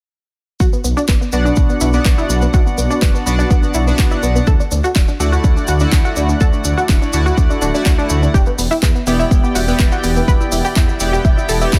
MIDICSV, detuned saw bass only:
0, 0, Header, 1, 2, 480
1, 0, Start_track
1, 0, Tempo, 483871
1, 597, Time_signature, 4, 2, 24, 8
1, 11697, End_track
2, 0, Start_track
2, 0, Title_t, "Detuned saw bass"
2, 0, Program_c, 0, 39
2, 597, Note_on_c, 0, 35, 97
2, 685, Note_off_c, 0, 35, 0
2, 836, Note_on_c, 0, 35, 83
2, 925, Note_off_c, 0, 35, 0
2, 1077, Note_on_c, 0, 30, 98
2, 1165, Note_off_c, 0, 30, 0
2, 1317, Note_on_c, 0, 35, 86
2, 1489, Note_off_c, 0, 35, 0
2, 1558, Note_on_c, 0, 35, 79
2, 1646, Note_off_c, 0, 35, 0
2, 1798, Note_on_c, 0, 35, 97
2, 1970, Note_off_c, 0, 35, 0
2, 2037, Note_on_c, 0, 35, 86
2, 2126, Note_off_c, 0, 35, 0
2, 2276, Note_on_c, 0, 35, 79
2, 2449, Note_off_c, 0, 35, 0
2, 2518, Note_on_c, 0, 35, 98
2, 2606, Note_off_c, 0, 35, 0
2, 2757, Note_on_c, 0, 35, 81
2, 2846, Note_off_c, 0, 35, 0
2, 2997, Note_on_c, 0, 30, 97
2, 3086, Note_off_c, 0, 30, 0
2, 3236, Note_on_c, 0, 35, 87
2, 3409, Note_off_c, 0, 35, 0
2, 3478, Note_on_c, 0, 35, 81
2, 3566, Note_off_c, 0, 35, 0
2, 3716, Note_on_c, 0, 35, 100
2, 3889, Note_off_c, 0, 35, 0
2, 3958, Note_on_c, 0, 35, 85
2, 4046, Note_off_c, 0, 35, 0
2, 4198, Note_on_c, 0, 35, 81
2, 4370, Note_off_c, 0, 35, 0
2, 4437, Note_on_c, 0, 38, 95
2, 4525, Note_off_c, 0, 38, 0
2, 4677, Note_on_c, 0, 38, 85
2, 4765, Note_off_c, 0, 38, 0
2, 4917, Note_on_c, 0, 26, 96
2, 5006, Note_off_c, 0, 26, 0
2, 5156, Note_on_c, 0, 38, 85
2, 5329, Note_off_c, 0, 38, 0
2, 5397, Note_on_c, 0, 38, 82
2, 5485, Note_off_c, 0, 38, 0
2, 5637, Note_on_c, 0, 38, 97
2, 5809, Note_off_c, 0, 38, 0
2, 5877, Note_on_c, 0, 38, 87
2, 5966, Note_off_c, 0, 38, 0
2, 6116, Note_on_c, 0, 38, 83
2, 6289, Note_off_c, 0, 38, 0
2, 6357, Note_on_c, 0, 38, 94
2, 6445, Note_off_c, 0, 38, 0
2, 6596, Note_on_c, 0, 38, 84
2, 6685, Note_off_c, 0, 38, 0
2, 6836, Note_on_c, 0, 26, 99
2, 6925, Note_off_c, 0, 26, 0
2, 7076, Note_on_c, 0, 38, 85
2, 7249, Note_off_c, 0, 38, 0
2, 7317, Note_on_c, 0, 38, 81
2, 7405, Note_off_c, 0, 38, 0
2, 7556, Note_on_c, 0, 26, 78
2, 7645, Note_off_c, 0, 26, 0
2, 7796, Note_on_c, 0, 38, 88
2, 7885, Note_off_c, 0, 38, 0
2, 8036, Note_on_c, 0, 38, 83
2, 8209, Note_off_c, 0, 38, 0
2, 8276, Note_on_c, 0, 28, 97
2, 8365, Note_off_c, 0, 28, 0
2, 8516, Note_on_c, 0, 28, 83
2, 8605, Note_off_c, 0, 28, 0
2, 8756, Note_on_c, 0, 40, 95
2, 8845, Note_off_c, 0, 40, 0
2, 8995, Note_on_c, 0, 28, 86
2, 9168, Note_off_c, 0, 28, 0
2, 9237, Note_on_c, 0, 28, 81
2, 9326, Note_off_c, 0, 28, 0
2, 9477, Note_on_c, 0, 28, 98
2, 9649, Note_off_c, 0, 28, 0
2, 9716, Note_on_c, 0, 28, 85
2, 9805, Note_off_c, 0, 28, 0
2, 9958, Note_on_c, 0, 28, 80
2, 10130, Note_off_c, 0, 28, 0
2, 10197, Note_on_c, 0, 28, 97
2, 10285, Note_off_c, 0, 28, 0
2, 10437, Note_on_c, 0, 28, 82
2, 10526, Note_off_c, 0, 28, 0
2, 10677, Note_on_c, 0, 40, 96
2, 10765, Note_off_c, 0, 40, 0
2, 10917, Note_on_c, 0, 28, 87
2, 11089, Note_off_c, 0, 28, 0
2, 11157, Note_on_c, 0, 28, 80
2, 11245, Note_off_c, 0, 28, 0
2, 11397, Note_on_c, 0, 28, 100
2, 11569, Note_off_c, 0, 28, 0
2, 11637, Note_on_c, 0, 28, 85
2, 11697, Note_off_c, 0, 28, 0
2, 11697, End_track
0, 0, End_of_file